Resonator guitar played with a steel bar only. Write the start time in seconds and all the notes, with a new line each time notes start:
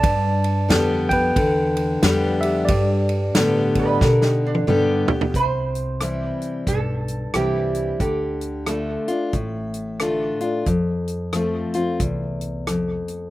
3.79 B4 D#5
4.01 G4 A#4
4.23 D#4 G4
4.46 D4
5.36 C5
6.25 B4
6.68 A4
7.35 G4
8.00 G4
8.67 A4